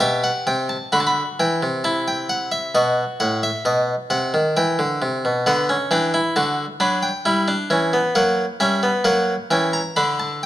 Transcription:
0.00 0.29 B2 medium
0.00 0.90 G4 medium
0.00 0.23 E5 medium
0.24 0.46 F#5 medium
0.47 0.75 C3 medium
0.47 0.69 G5 medium
0.69 0.92 A5 medium
0.92 1.21 D3 medium
0.92 1.81 F#4 medium
0.92 0.97 B5 medium
1.00 1.07 A5 medium
1.07 1.26 B5 medium
1.40 1.61 E3 medium
1.40 1.67 G5 medium
1.63 2.71 C3 medium
1.84 2.71 E4 medium
1.84 2.06 A5 medium
2.08 2.29 G5 medium
2.29 2.51 F#5 medium
2.52 2.73 E5 medium
2.75 3.02 B2 medium
2.75 5.42 F#4 medium
2.75 3.02 D#5 medium
3.20 3.48 A2 medium
3.20 3.41 F#5 medium
3.43 3.64 E5 medium
3.65 3.93 B2 medium
3.65 3.93 D#5 medium
4.10 4.32 C3 medium
4.10 4.38 F#5 medium
4.34 4.55 D#3 medium
4.57 4.78 E3 medium
4.57 5.44 G5 medium
4.79 5.00 D3 medium
5.02 5.23 C3 medium
5.25 5.46 B2 medium
5.46 5.74 D3 medium
5.46 5.68 B3 medium
5.46 5.74 F#5 medium
5.69 5.91 C#4 medium
5.91 6.19 E3 medium
5.91 6.13 D4 medium
5.91 6.19 G5 medium
6.14 6.35 E4 medium
6.36 6.64 D3 medium
6.36 6.64 F#4 medium
6.36 6.64 A5 medium
6.80 7.08 F#3 medium
6.80 7.08 D4 medium
6.80 7.02 B5 medium
7.03 8.13 G5 medium
7.25 7.54 G3 medium
7.25 7.47 E4 medium
7.48 7.70 D4 medium
7.70 7.99 E3 medium
7.70 7.93 C#4 medium
7.93 8.15 B3 medium
8.15 8.44 F#3 medium
8.15 8.44 A#3 medium
8.15 8.44 F#5 medium
8.60 8.89 G3 medium
8.60 8.83 C#4 medium
8.60 8.89 E5 medium
8.83 9.05 B3 medium
9.04 9.33 F#3 medium
9.04 9.33 A#3 medium
9.04 9.34 F#5 medium
9.51 9.80 E3 medium
9.51 9.80 C#4 medium
9.51 9.74 G5 medium
9.73 9.96 A#5 medium
9.96 10.46 D3 medium
9.96 10.46 D4 medium
9.96 10.19 B5 medium
10.20 10.42 A5 medium

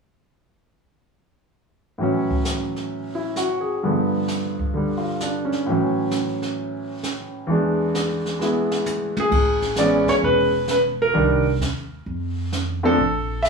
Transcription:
1.98 3.82 A2 soft
1.98 3.83 E3 soft
1.98 3.84 F#3 soft
1.98 brush sweep soft
2.03 3.84 C#4 soft
2.31 kick soft
2.45 snare soft
2.45 hi-hat pedal soft
2.76 snare soft
2.91 brush sweep soft
3.15 3.47 E4 soft
3.36 3.73 F#4 soft
3.36 snare soft
3.36 hi-hat pedal medium
3.61 3.92 G#4 soft
3.83 5.66 G2 soft
3.83 4.72 D3 soft
3.83 5.67 F3 soft
3.83 5.67 B3 soft
3.83 brush sweep soft
4.28 snare soft
4.28 hi-hat pedal soft
4.59 kick soft
4.74 5.66 D3 soft
4.74 5.67 G3 soft
4.74 brush sweep soft
4.98 5.30 F4 soft
5.20 5.57 D4 soft
5.20 snare soft
5.20 hi-hat pedal soft
5.45 5.69 C#4 soft
5.52 snare soft
5.65 7.50 A2 soft
5.65 7.47 E3 soft
5.65 brush sweep soft
5.70 7.51 F#3 soft
5.70 7.52 C#4 soft
6.11 snare soft
6.11 hi-hat pedal soft
6.42 snare soft
6.57 brush sweep soft
7.03 snare soft
7.03 hi-hat pedal medium
7.47 9.31 E2 soft
7.47 9.32 E3 soft
7.47 8.38 G#3 soft
7.47 brush sweep soft
7.52 9.34 D4 soft
7.95 snare soft
7.95 hi-hat pedal soft
8.26 snare soft
8.39 9.32 G#3 soft
8.39 9.33 B3 soft
8.39 9.34 E4 soft
8.39 snare soft
8.72 snare soft
8.86 hi-hat pedal soft
8.86 high tom soft
9.17 9.81 G#4 medium
9.17 high tom medium
9.31 10.05 A1 medium
9.31 brush sweep soft
9.31 kick medium
9.31 ride medium
9.62 snare soft
9.76 10.49 E3 soft
9.76 10.50 G#3 soft
9.76 10.50 B3 soft
9.76 10.50 C#4 medium
9.76 10.08 D5 medium
9.76 snare soft
9.76 hi-hat pedal soft
10.08 10.14 C#5 medium
10.08 muted upright bass stroke soft
10.08 snare soft
10.22 11.11 E1 medium
10.22 10.67 B4 medium
10.22 brush sweep soft
10.68 10.78 B4 medium
10.68 snare soft
10.68 hi-hat pedal soft
11.02 11.44 A#4 medium
11.14 11.58 C2 medium
11.14 11.43 D#3 soft
11.14 11.43 G3 soft
11.14 11.44 A#3 soft
11.14 11.43 D4 medium
11.14 brush sweep soft
11.59 12.03 D#2 medium
11.59 snare medium
11.59 hi-hat pedal medium
12.06 12.95 F2 medium
12.06 brush sweep soft
12.52 snare medium
12.52 hi-hat pedal soft
12.83 12.97 F3 medium
12.83 12.97 A3 medium
12.83 12.97 C4 soft
12.83 12.98 D4 medium
12.83 13.47 A4 medium
12.98 13.49 A#1 medium
12.98 brush sweep soft
13.43 13.49 E5 medium
13.43 snare soft
13.43 hi-hat pedal soft

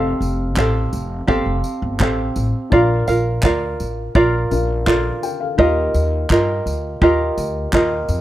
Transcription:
0.00 0.14 F1 medium
0.00 0.56 C4 medium
0.00 2.67 C4 medium
0.00 0.56 G4 medium
0.00 2.68 G4 medium
0.00 0.57 A4 medium
0.00 2.69 A4 medium
0.00 0.58 F5 medium
0.00 2.70 F5 medium
0.21 0.57 F1 medium
0.21 tambourine medium
0.57 0.86 A1 medium
0.57 1.27 C4 medium
0.57 1.26 G4 medium
0.57 1.27 A4 medium
0.57 1.28 F5 medium
0.57 kick loud
0.57 clap loud
0.93 1.22 F1 medium
0.93 tambourine medium
1.27 1.43 G1 medium
1.27 1.99 C4 medium
1.27 1.98 G4 medium
1.27 2.00 A4 medium
1.27 2.02 F5 medium
1.27 kick loud
1.46 1.61 F1 medium
1.64 tambourine medium
1.82 1.97 G1 loud
2.00 2.29 A1 medium
2.00 2.72 C4 medium
2.00 2.71 G4 medium
2.00 2.72 A4 medium
2.00 2.73 F5 medium
2.00 kick medium
2.00 clap medium
2.36 2.51 A1 medium
2.36 tambourine medium
2.70 3.01 A#1 loud
2.70 4.46 D4 medium
2.70 4.47 F4 medium
2.70 3.08 F4 medium
2.70 4.48 A#4 medium
2.70 3.07 A#4 medium
2.70 3.08 D5 medium
2.70 3.07 F5 medium
2.70 kick loud
2.74 4.49 F5 medium
3.07 3.37 A#1 medium
3.07 3.43 F4 soft
3.07 3.43 A#4 soft
3.07 3.44 F5 medium
3.07 tambourine medium
3.43 3.73 D2 medium
3.43 4.15 F4 medium
3.43 4.16 A#4 medium
3.43 4.14 D5 medium
3.43 4.16 F5 medium
3.43 kick medium
3.43 clap loud
3.80 4.09 A1 medium
3.80 tambourine medium
4.15 4.44 A#1 medium
4.15 4.86 F4 medium
4.15 4.87 A#4 loud
4.15 4.85 D5 medium
4.15 4.87 F5 loud
4.15 kick loud
4.51 5.10 A#1 medium
4.51 5.58 D4 medium
4.51 5.58 F4 soft
4.51 4.87 A#4 soft
4.51 4.85 F5 medium
4.51 tambourine medium
4.86 5.58 F4 medium
4.86 5.21 A4 medium
4.86 5.58 A#4 medium
4.86 5.58 D5 medium
4.86 5.21 F5 medium
4.86 5.59 F5 medium
4.86 kick loud
4.86 clap medium
5.23 5.40 A#4 medium
5.23 5.40 G5 medium
5.23 tambourine medium
5.40 5.75 A4 medium
5.40 5.60 F5 medium
5.57 5.88 D#2 loud
5.57 8.21 D#4 medium
5.57 6.30 F4 medium
5.57 6.30 G4 medium
5.57 8.21 G4 medium
5.57 6.31 A#4 medium
5.57 8.21 A#4 medium
5.57 6.32 D#5 medium
5.57 kick loud
5.61 8.21 F5 medium
5.94 6.24 D#2 loud
5.94 tambourine medium
6.30 6.59 G2 medium
6.30 7.01 F4 medium
6.30 7.01 G4 medium
6.30 7.03 A#4 medium
6.30 7.03 D#5 medium
6.30 kick loud
6.30 clap loud
6.66 6.95 D2 medium
6.66 tambourine medium
7.01 7.31 D#2 medium
7.01 7.72 F4 medium
7.01 7.73 G4 medium
7.01 7.74 A#4 medium
7.01 7.74 D#5 loud
7.01 kick loud
7.38 7.67 D2 loud
7.38 tambourine medium
7.73 8.02 D#2 loud
7.73 8.21 F4 medium
7.73 8.21 G4 medium
7.73 8.21 A#4 medium
7.73 8.21 D#5 medium
7.73 kick loud
7.73 clap loud
8.09 8.21 F2 medium
8.09 tambourine medium

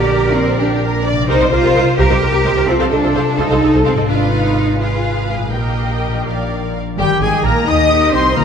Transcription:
0.00 1.29 A#1 medium
0.00 1.22 A#2 medium
0.00 1.15 A#3 soft
0.00 1.27 D4 soft
0.00 0.35 G4 medium
0.00 0.58 A#4 medium
0.00 1.25 A#4 medium
0.00 1.25 D5 medium
0.00 1.26 D5 medium
0.00 1.29 D5 soft
0.35 0.59 C4 medium
0.58 1.06 D4 medium
0.58 0.82 G4 medium
0.81 1.05 A#4 medium
1.04 1.29 D5 medium
1.12 2.50 C3 medium
1.16 2.64 A#3 soft
1.21 5.11 D#4 soft
1.25 1.50 D#4 medium
1.25 1.34 G4 medium
1.25 1.34 A#4 medium
1.25 2.64 C5 soft
1.25 1.97 C5 medium
1.29 1.34 C2 medium
1.29 1.34 A#4 medium
1.40 1.46 C2 medium
1.40 1.45 A#4 medium
1.40 1.45 C5 medium
1.40 1.45 D#5 medium
1.52 1.57 C2 medium
1.52 1.98 F4 loud
1.52 1.57 A#4 medium
1.52 1.57 C5 medium
1.63 1.69 C2 medium
1.63 1.68 G4 medium
1.63 1.69 A#4 medium
1.63 1.70 A#4 medium
1.76 1.81 C2 medium
1.76 1.80 A#4 medium
1.76 1.80 C5 medium
1.76 1.81 D#5 soft
1.99 2.04 C2 medium
1.99 2.04 G4 medium
1.99 2.68 G4 medium
1.99 2.04 A#4 medium
1.99 2.69 A#4 medium
2.10 2.16 C2 medium
2.10 2.15 A#4 medium
2.10 2.15 C5 medium
2.10 2.15 D#5 medium
2.22 2.27 C2 medium
2.22 2.27 A#4 medium
2.22 2.27 C5 medium
2.33 2.39 C2 medium
2.33 2.38 G4 medium
2.33 2.38 A#4 medium
2.44 2.51 C2 medium
2.44 2.50 A#4 medium
2.44 2.50 C5 medium
2.44 2.49 D#5 medium
2.51 4.02 C3 medium
2.56 2.62 C2 medium
2.56 4.05 A3 soft
2.56 2.61 A#4 medium
2.56 2.62 C5 medium
2.60 4.00 F4 medium
2.65 2.73 F4 medium
2.65 2.73 A4 medium
2.65 4.06 A4 medium
2.65 4.09 C5 soft
2.65 2.73 C5 medium
2.69 2.74 C2 medium
2.69 2.92 C4 medium
2.80 2.85 C2 medium
2.80 2.85 A4 medium
2.80 2.85 C5 medium
2.80 2.85 F5 medium
2.91 2.97 C2 soft
2.91 3.38 D4 medium
2.91 2.97 A4 medium
2.91 2.96 D#5 medium
3.03 3.09 C2 medium
3.03 3.08 F4 medium
3.03 3.08 A4 medium
3.03 3.08 C5 medium
3.15 3.20 C2 medium
3.15 3.20 A4 medium
3.15 3.20 C5 medium
3.15 3.20 F5 medium
3.38 3.44 C2 medium
3.38 3.86 D#4 medium
3.38 3.44 F4 medium
3.38 3.44 A4 medium
3.38 3.43 C5 medium
3.50 3.56 C2 medium
3.50 3.56 A4 soft
3.50 3.56 C5 medium
3.50 3.55 F5 soft
3.61 3.68 C2 medium
3.61 3.67 A4 medium
3.61 3.66 D#5 medium
3.73 3.79 C2 medium
3.73 3.79 F4 medium
3.73 3.79 A4 medium
3.73 3.78 C5 medium
3.85 3.91 C2 medium
3.85 4.09 C4 medium
3.85 3.91 A4 medium
3.85 3.90 C5 medium
3.85 3.90 F5 medium
3.92 5.46 G#2 medium
3.96 4.03 C2 medium
3.96 5.48 G#3 soft
3.96 4.02 A4 medium
3.96 4.02 D#5 medium
4.01 5.51 F4 soft
4.06 4.33 D4 medium
4.06 4.79 F4 medium
4.06 5.53 B4 soft
4.06 4.77 B4 medium
4.06 4.76 F5 medium
4.10 5.49 G#1 soft
4.33 4.80 D#4 medium
4.80 5.28 F4 medium
4.80 5.51 G#4 medium
4.80 5.52 B4 medium
4.80 5.52 F5 medium
5.29 5.37 F4 medium
5.35 6.07 A#2 soft
5.39 6.21 G3 soft
5.44 6.24 D#4 soft
5.49 6.21 A#4 soft
5.53 6.25 A#1 soft
5.53 6.25 A#3 medium
5.53 6.63 G4 soft
5.53 6.25 A#4 soft
5.53 6.26 D#5 soft
5.53 6.26 G5 soft
6.08 6.92 A#2 soft
6.13 6.94 F3 soft
6.17 6.96 D4 soft
6.22 7.43 A#4 soft
6.26 6.77 A#1 soft
6.26 6.78 A#4 soft
6.26 6.78 D5 soft
6.26 6.78 F5 soft
6.98 7.06 G1 medium
6.98 8.37 D#3 medium
6.98 7.08 G3 medium
6.98 7.20 G3 medium
6.98 7.24 G4 medium
6.98 7.07 G4 medium
6.98 7.23 G4 medium
6.98 7.20 G5 medium
7.21 7.29 G#1 medium
7.21 7.43 G#3 medium
7.21 7.44 G#3 medium
7.21 7.89 D#4 soft
7.21 7.43 G#4 medium
7.21 7.44 G#4 medium
7.21 7.47 G#4 medium
7.21 7.44 G#5 medium
7.43 7.52 A#1 medium
7.43 7.67 A#3 medium
7.43 7.67 A#4 medium
7.43 8.45 A#4 soft
7.43 7.55 A#4 medium
7.43 7.70 A#4 medium
7.43 7.67 A#5 medium
7.67 8.12 D#2 medium
7.67 8.13 D#4 medium
7.67 8.12 D#4 medium
7.67 8.31 G4 medium
7.67 8.37 G4 soft
7.67 8.12 D#5 medium
7.67 8.15 D#5 medium
7.67 8.13 D#5 medium
7.67 8.12 D#6 medium
7.67 8.13 D#6 medium
7.90 8.37 D#4 soft
8.11 8.35 C2 medium
8.11 8.37 G3 medium
8.11 8.35 C4 medium
8.11 8.36 C4 medium
8.11 8.35 C5 medium
8.11 8.37 C5 medium
8.11 8.24 C5 medium
8.11 8.35 C6 medium
8.34 8.45 A#1 medium
8.34 8.45 D3 medium
8.34 8.45 A#3 medium
8.34 8.45 F4 medium
8.34 8.45 A#4 medium
8.34 8.45 A#5 medium

